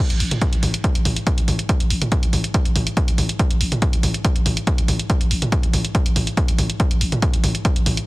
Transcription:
0.10 0.20 A1 medium
0.10 closed hi-hat medium
0.20 0.31 A1 loud
0.20 open hi-hat loud
0.31 closed hi-hat medium
0.31 mid tom medium
0.41 kick loud
0.41 closed hi-hat medium
0.53 0.62 A1 medium
0.53 closed hi-hat medium
0.63 0.74 A1 loud
0.63 mid tom medium
0.63 open hi-hat loud
0.74 closed hi-hat medium
0.84 kick loud
0.84 closed hi-hat medium
0.95 1.05 A1 medium
0.95 closed hi-hat medium
1.05 1.16 A1 loud
1.05 mid tom medium
1.05 open hi-hat loud
1.16 closed hi-hat medium
1.27 kick loud
1.27 closed hi-hat medium
1.38 1.47 A1 medium
1.38 closed hi-hat medium
1.48 1.59 A1 loud
1.48 mid tom medium
1.48 open hi-hat loud
1.59 closed hi-hat medium
1.69 kick loud
1.69 closed hi-hat medium
1.80 1.90 A1 medium
1.80 closed hi-hat medium
1.90 2.01 A1 medium
1.90 open hi-hat loud
2.02 closed hi-hat medium
2.02 mid tom medium
2.12 kick loud
2.12 closed hi-hat medium
2.23 2.32 A1 medium
2.23 closed hi-hat medium
2.33 2.44 A1 loud
2.33 mid tom medium
2.33 open hi-hat loud
2.44 closed hi-hat medium
2.54 kick loud
2.54 closed hi-hat medium
2.65 2.75 A1 medium
2.65 closed hi-hat medium
2.76 2.86 A1 loud
2.76 mid tom medium
2.76 open hi-hat loud
2.87 closed hi-hat medium
2.97 kick loud
2.97 closed hi-hat medium
3.08 3.18 A1 medium
3.08 closed hi-hat medium
3.18 3.29 A1 loud
3.18 mid tom medium
3.18 open hi-hat loud
3.29 closed hi-hat medium
3.39 kick loud
3.39 closed hi-hat medium
3.51 3.60 A1 medium
3.51 closed hi-hat medium
3.61 3.72 A1 loud
3.61 open hi-hat loud
3.72 closed hi-hat medium
3.72 mid tom medium
3.82 kick loud
3.82 closed hi-hat medium
3.93 4.03 A1 medium
3.93 closed hi-hat medium
4.03 4.14 A1 loud
4.03 mid tom medium
4.03 open hi-hat loud
4.14 closed hi-hat medium
4.25 kick loud
4.25 closed hi-hat medium
4.36 4.45 A1 medium
4.36 closed hi-hat medium
4.46 4.57 A1 loud
4.46 mid tom medium
4.46 open hi-hat loud
4.57 closed hi-hat medium
4.67 kick loud
4.67 closed hi-hat medium
4.78 4.88 A1 medium
4.78 closed hi-hat medium
4.88 4.99 A1 loud
4.88 mid tom medium
4.88 open hi-hat loud
4.99 closed hi-hat medium
5.10 kick loud
5.10 closed hi-hat medium
5.21 5.30 A1 medium
5.21 closed hi-hat medium
5.31 5.42 A1 loud
5.31 open hi-hat loud
5.42 closed hi-hat medium
5.42 mid tom medium
5.52 kick loud
5.52 closed hi-hat medium
5.63 5.73 A1 medium
5.63 closed hi-hat medium
5.73 5.84 A1 loud
5.73 mid tom medium
5.73 open hi-hat loud
5.85 closed hi-hat medium
5.95 kick loud
5.95 closed hi-hat medium
6.06 6.15 A1 medium
6.06 closed hi-hat medium
6.16 6.27 A1 loud
6.16 mid tom medium
6.16 open hi-hat loud
6.27 closed hi-hat medium
6.37 kick loud
6.37 closed hi-hat medium
6.48 6.58 A1 medium
6.48 closed hi-hat medium
6.58 6.69 A1 loud
6.58 mid tom medium
6.58 open hi-hat loud
6.70 closed hi-hat medium
6.80 kick loud
6.80 closed hi-hat medium
6.91 7.00 A1 medium
6.91 closed hi-hat medium
7.01 7.12 A1 loud
7.01 open hi-hat loud
7.12 closed hi-hat medium
7.12 mid tom medium
7.22 kick loud
7.22 closed hi-hat medium
7.33 7.43 A1 medium
7.33 closed hi-hat medium
7.44 7.55 A1 loud
7.44 mid tom medium
7.44 open hi-hat loud
7.55 closed hi-hat medium
7.65 kick loud
7.65 closed hi-hat medium
7.76 7.86 A1 medium
7.76 closed hi-hat medium
7.86 7.97 A1 loud
7.86 mid tom medium
7.86 open hi-hat loud
7.97 closed hi-hat medium

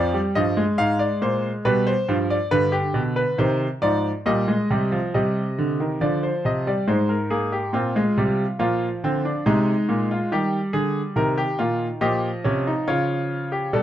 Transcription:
0.00 0.19 F2 medium
0.00 0.13 F3 medium
0.00 0.19 D5 medium
0.14 0.35 G3 medium
0.35 0.63 G2 medium
0.35 0.57 F3 medium
0.35 0.62 D#5 medium
0.57 1.62 G#3 medium
0.78 1.05 G#2 medium
0.78 0.99 F5 medium
0.99 1.21 D5 medium
1.22 1.49 A#2 medium
1.22 1.49 C5 medium
1.65 1.92 B2 medium
1.65 1.92 G3 medium
1.65 1.86 B4 medium
1.87 2.13 C5 medium
2.08 2.35 G2 medium
2.08 2.35 F3 medium
2.30 2.51 D5 medium
2.51 2.78 G2 medium
2.51 3.36 D3 medium
2.51 2.72 B4 medium
2.72 2.99 G4 medium
2.94 3.21 B2 medium
3.16 3.37 B4 medium
3.38 3.66 C3 medium
3.38 3.65 D#3 medium
3.38 3.66 C5 medium
3.82 4.09 G#2 medium
3.82 4.09 F3 medium
3.82 4.09 D5 medium
4.26 4.53 A#2 medium
4.26 4.47 G3 medium
4.26 5.11 D#5 medium
4.48 4.69 G#3 medium
4.70 4.97 C3 medium
4.70 4.91 G3 medium
4.92 5.13 F3 medium
5.14 5.99 C3 medium
5.14 5.41 G3 medium
5.14 5.98 D#5 medium
5.58 5.79 D3 medium
5.80 6.01 D#3 medium
6.01 6.28 D3 medium
6.01 6.64 F3 medium
6.01 6.22 D5 medium
6.23 6.44 C5 medium
6.45 6.71 C3 medium
6.45 6.66 D#5 medium
6.67 6.87 G3 medium
6.67 6.87 D5 medium
6.88 7.71 G#2 medium
6.88 7.14 G#3 medium
6.88 7.09 C5 medium
7.09 7.30 A#4 medium
7.30 7.57 A#3 medium
7.30 7.51 G#4 medium
7.52 7.73 G4 medium
7.73 8.00 A#2 medium
7.73 7.94 C4 medium
7.73 8.57 F4 medium
7.96 8.16 G#3 medium
8.18 8.44 C3 medium
8.18 8.44 G3 medium
8.59 8.86 A#2 medium
8.59 9.43 F3 medium
8.59 8.86 F4 medium
9.04 9.30 D3 medium
9.04 9.24 C4 medium
9.25 9.45 D4 medium
9.46 9.72 C3 medium
9.46 10.29 G#3 medium
9.46 10.08 D#4 medium
9.89 10.15 A#2 medium
10.11 10.31 F4 medium
10.32 10.58 D#3 medium
10.32 11.14 G3 medium
10.32 10.58 G4 medium
10.73 11.00 D3 medium
10.73 11.00 G#4 medium
11.16 11.42 C3 medium
11.16 11.99 D#3 medium
11.16 11.37 A#4 medium
11.38 11.58 G4 medium
11.59 11.86 A#2 medium
11.59 11.85 F4 medium
12.01 12.28 A#2 medium
12.01 13.69 F3 medium
12.01 12.28 G4 medium
12.01 12.84 D#5 medium
12.44 12.71 C3 medium
12.44 12.65 C#4 medium
12.67 12.87 D#4 medium
12.88 13.71 C#3 medium
12.88 13.50 F4 medium
12.88 13.71 C#5 medium
13.52 13.73 G4 medium
13.73 13.83 B2 medium
13.73 13.83 G3 medium
13.73 13.83 A4 medium
13.73 13.83 D5 medium

